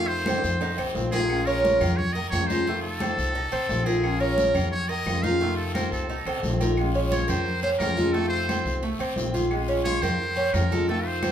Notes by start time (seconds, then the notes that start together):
Already playing: F2 C3 D#3 A3 C4 F4
0.08 C5, high conga
0.26 C4, high conga, high timbale, low agogo, short guiro, claves
0.38 high timbale
0.44 F2, short guiro
0.50 high timbale
0.61 D#4, muted steel-string acoustic guitar stroke, high conga, high timbale, low agogo, long guiro
0.73 low timbale
0.78 C2 C4, high conga, low agogo, claves
0.84 low timbale
0.95 A#1 D#3 A3 C4 F4, high conga, low timbale, short guiro
1.11 D#3 A3 C4 F4 G#4 A#4, high conga, low agogo, short guiro
1.19 low timbale
1.28 F3 G#3 C#4 F4, high conga, low agogo, long guiro, claves
1.46 C#4 A#4, high conga
1.64 high conga, low timbale, low agogo, short guiro
1.80 F2 F4, high conga, low conga, low agogo, short guiro, claves
1.97 C#5, muted steel-string acoustic guitar stroke, high conga, low conga, long guiro
2.13 A#4 D#5, high conga, low agogo
2.30 F2 F3 G#3 C#5, high conga, low timbale, low agogo, short guiro, claves
2.34 C#4 F4
2.47 C#4 D#4 F4 C5, high conga, short guiro
2.52 G#3
2.67 C3 D#3 A3 C4 F4, high conga, low agogo, long guiro
2.82 A4, high conga
3.00 C4, high conga, low timbale, low agogo, short guiro, claves
3.18 C2, short guiro
3.35 D#4, muted steel-string acoustic guitar stroke, high conga, low agogo, long guiro
3.52 C2 C4, high conga, low agogo, claves
3.69 A#1 D#3 A3 C4 F4, high conga, low timbale, short guiro
3.85 D#3 A3 C4 F4 G#4 A#4, low agogo, short guiro
4.03 F3 G#3 C#4 F4, high conga, low agogo, long guiro, claves
4.20 C#4 A#4, high conga
4.37 high conga, low timbale, low agogo, short guiro
4.54 F2 F4, high conga, low conga, low agogo, short guiro, claves
4.71 C#5, muted steel-string acoustic guitar stroke, high conga, long guiro
4.89 A#4 D#5, high conga, low agogo
5.06 F2 F3 G#3 C#4 F4, high conga, low timbale, low agogo, short guiro, claves
5.23 G#3 C#4 D#4 F4 F5, high conga, short guiro
5.40 C3 D#3 A3 C4 F4, high conga, low agogo, long guiro
5.57 A4, high conga
5.74 C4 A#4, high conga, low timbale, low agogo, short guiro, claves
5.91 C2 A4, short guiro
6.09 D#4, muted steel-string acoustic guitar stroke, high conga, low agogo, long guiro
6.25 C2 C4, high conga, high timbale, low agogo, claves
6.37 high timbale
6.43 A#1 D#3 A3 C4, high conga, short guiro
6.47 F4, low timbale
6.60 D#3 A3 C4 F4 A#4, high conga, low timbale, low agogo, short guiro
6.77 F3 G#3 C#4 F4, high conga, low agogo, long guiro, claves
6.95 C#4, high conga
7.12 F4 C#5, high conga, low timbale, low agogo, short guiro
7.28 F2 A#4 C5, high conga, low conga, low agogo, short guiro, claves
7.46 muted steel-string acoustic guitar stroke, high conga, long guiro
7.62 C#4 C5, high conga, low agogo
7.78 F2 F3 G#3 C#4 F4 A#4, high conga, low timbale, low agogo, short guiro, claves
7.97 G#3 C#4 F4 A4, high conga, short guiro
8.13 C3 D#3 A3 A4, high conga, low agogo, long guiro
8.17 C4 F4
8.29 C5
8.49 C4, high conga, low timbale, low agogo, short guiro, claves
8.65 C2, short guiro
8.82 A3, muted steel-string acoustic guitar stroke, high conga, low agogo, long guiro
8.99 C2 C4, high conga, low agogo, claves
9.16 A#1 D#3 A3 C4 F4, high conga, low timbale, short guiro
9.33 D#3 A3 C4 F4, high conga, low agogo, short guiro
9.51 F3 G#3 C#4 F4, high conga, low agogo, long guiro, claves
9.68 C#4, high conga
9.84 F4 C#5, high conga, low timbale, low agogo, short guiro
10.02 F2 A#4 C5, high conga, low conga, low agogo, short guiro, claves
10.20 muted steel-string acoustic guitar stroke, long guiro
10.36 C#4, high conga, low agogo
10.54 F2 F3 G#3 C#4 F4 A#4, high conga, low timbale, low agogo, short guiro, claves
10.71 G#3 C#4 F4 A4, high conga, short guiro
10.87 C3 D#3 A3 C4 F4 A4, high conga, low agogo, long guiro
11.06 C5, high conga
11.23 C4, high conga, low timbale, low agogo, short guiro, claves